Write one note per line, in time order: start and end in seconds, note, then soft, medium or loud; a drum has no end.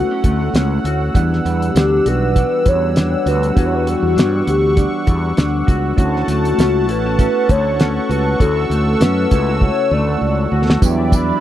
0.00 0.23 A3 medium
0.00 1.17 A3 medium
0.00 0.11 B3 medium
0.00 1.16 C#4 medium
0.00 1.17 E4 medium
0.00 0.50 F#4 medium
0.00 0.85 F#4 medium
0.00 1.17 F#4 medium
0.00 1.11 A4 medium
0.00 5.95 F#5 medium
0.00 1.11 C#6 medium
0.00 5.94 E6 medium
0.11 0.54 C#4 medium
0.24 0.48 D2 medium
0.24 1.22 A3 medium
0.24 kick medium
0.24 closed hi-hat medium
0.54 0.78 C#2 medium
0.54 1.22 C#4 medium
0.54 snare loud
0.54 closed hi-hat medium
0.84 1.08 D2 medium
0.84 1.18 F#4 medium
0.84 closed hi-hat medium
1.14 1.39 E2 medium
1.14 3.56 E3 medium
1.14 1.75 G3 medium
1.14 5.95 G3 medium
1.14 1.75 B3 medium
1.14 1.75 D4 medium
1.14 1.76 F#5 loud
1.14 kick medium
1.14 closed hi-hat medium
1.33 snare soft
1.45 1.69 E2 loud
1.45 2.66 G3 medium
1.45 2.10 G4 medium
1.45 closed hi-hat medium
1.62 closed hi-hat soft
1.75 1.99 D2 medium
1.75 2.36 D4 medium
1.75 snare loud
1.75 closed hi-hat medium
2.04 2.43 B1 medium
2.04 2.26 G3 medium
2.04 2.26 B3 medium
2.04 2.27 D4 medium
2.04 3.26 F#4 medium
2.04 2.27 F#4 medium
2.04 2.70 B4 loud
2.04 closed hi-hat medium
2.35 3.17 G3 medium
2.35 3.17 B3 medium
2.35 2.97 D4 medium
2.35 3.18 D4 medium
2.35 3.18 F#4 medium
2.35 kick medium
2.35 closed hi-hat medium
2.66 3.14 E2 medium
2.66 3.85 G3 medium
2.66 3.30 C#5 loud
2.66 kick medium
2.66 closed hi-hat medium
2.96 4.16 D4 medium
2.96 snare loud
2.96 closed hi-hat medium
3.26 3.50 D2 medium
3.26 3.57 F#4 medium
3.26 3.57 B4 loud
3.26 closed hi-hat medium
3.43 closed hi-hat soft
3.55 3.94 E2 medium
3.55 5.99 E3 medium
3.55 4.16 G3 medium
3.55 4.16 B3 medium
3.55 4.17 D4 medium
3.55 4.17 F#4 medium
3.55 5.09 F#4 medium
3.55 3.67 B4 loud
3.55 5.96 C#6 medium
3.55 kick loud
3.55 closed hi-hat medium
3.66 3.76 C#5 medium
3.75 3.88 B4 loud
3.86 5.05 G3 medium
3.86 4.44 F#4 medium
3.86 closed hi-hat medium
4.02 4.14 E2 medium
4.16 4.41 G2 medium
4.16 4.76 D4 medium
4.16 snare loud
4.16 closed hi-hat medium
4.46 4.85 D2 medium
4.46 4.68 G3 medium
4.46 4.68 B3 medium
4.46 4.69 D4 medium
4.46 4.69 F#4 medium
4.46 5.65 G4 loud
4.46 closed hi-hat medium
4.77 5.58 G3 medium
4.77 5.59 B3 medium
4.77 5.36 D4 medium
4.77 5.59 D4 medium
4.77 5.60 F#5 medium
4.77 kick medium
4.77 closed hi-hat medium
5.06 5.31 E2 loud
5.06 6.04 G3 medium
5.06 kick medium
5.06 closed hi-hat medium
5.37 5.62 D2 medium
5.37 6.58 D4 medium
5.37 snare loud
5.37 closed hi-hat medium
5.67 5.92 C#2 medium
5.67 5.98 F#4 medium
5.67 kick loud
5.67 closed hi-hat medium
5.97 6.22 D2 loud
5.97 6.58 A3 medium
5.97 6.58 C#4 medium
5.97 6.59 E4 medium
5.97 6.88 F#4 medium
5.97 6.59 F#4 loud
5.97 10.78 A4 medium
5.97 10.78 F#5 medium
5.97 8.38 A5 medium
5.97 10.78 C#6 medium
5.97 kick loud
5.97 closed hi-hat medium
6.16 snare soft
6.28 6.52 D2 loud
6.28 7.48 A3 medium
6.28 6.86 F#4 medium
6.28 closed hi-hat medium
6.45 closed hi-hat soft
6.58 6.89 C#2 medium
6.58 7.18 C#4 medium
6.58 snare loud
6.58 closed hi-hat loud
6.87 7.26 A1 medium
6.87 7.09 A3 medium
6.87 7.10 C#4 medium
6.87 7.10 E4 medium
6.87 7.06 E4 medium
6.87 7.10 F#4 medium
6.87 7.52 B4 loud
6.87 closed hi-hat medium
7.06 8.08 F#4 medium
7.18 8.00 A3 medium
7.18 8.01 C#4 medium
7.18 7.79 C#4 medium
7.18 8.01 E4 medium
7.18 8.01 F#4 medium
7.18 kick medium
7.18 closed hi-hat medium
7.49 7.98 D2 loud
7.49 8.70 A3 medium
7.49 8.09 C#5 loud
7.49 kick medium
7.49 closed hi-hat medium
7.80 9.00 C#4 medium
7.80 snare loud
7.80 closed hi-hat medium
8.09 8.34 C#2 medium
8.09 8.41 F#4 medium
8.09 8.42 B4 loud
8.09 closed hi-hat medium
8.40 8.64 D2 medium
8.40 9.00 A3 medium
8.40 9.01 C#4 medium
8.40 9.01 E4 medium
8.40 9.31 F#4 medium
8.40 9.02 F#4 medium
8.40 9.02 A4 loud
8.40 10.80 E6 loud
8.40 kick loud
8.40 closed hi-hat medium
8.70 8.94 D2 medium
8.70 9.91 A3 medium
8.70 closed hi-hat medium
9.00 9.25 F#2 medium
9.00 9.62 C#4 medium
9.00 9.64 B4 loud
9.00 snare loud
9.00 closed hi-hat loud
9.31 9.69 C#2 medium
9.31 9.52 A3 medium
9.31 9.52 C#4 medium
9.31 9.49 E4 medium
9.31 9.53 E4 medium
9.31 9.53 F#4 medium
9.31 kick medium
9.31 closed hi-hat medium
9.49 10.51 F#4 medium
9.60 10.43 C#3 medium
9.60 10.42 A3 medium
9.60 10.43 E4 medium
9.60 10.43 F#4 medium
9.60 9.94 C#5 loud
9.60 kick medium
9.91 10.16 D2 medium
9.91 10.89 A3 medium
9.91 10.53 D5 loud
10.21 10.46 C#2 medium
10.52 10.76 D2 medium
10.52 11.40 F#4 medium
10.70 snare medium
10.81 11.30 E2 loud
10.81 11.40 E3 medium
10.81 11.40 F#3 medium
10.81 11.40 G3 medium
10.81 11.40 B3 medium
10.81 11.40 D4 medium
10.81 11.40 E4 medium
10.81 11.40 D5 medium
10.81 11.40 E5 medium
10.81 kick loud
10.81 closed hi-hat medium
10.81 tambourine soft
10.85 11.16 G5 medium
11.12 11.40 D4 medium
11.12 11.40 B5 loud
11.12 kick medium
11.12 closed hi-hat medium
11.12 tambourine soft